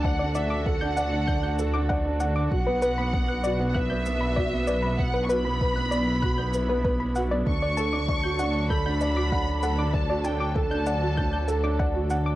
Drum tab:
SH |-x-x-x-x|-x-x-x-x|-x-x-x-x|-x-x-x-x|
BD |o-o-o-o-|o-o-o-o-|o-o-o-o-|o-o-o-o-|

SH |-x-x-x-x|
BD |o-o-o-o-|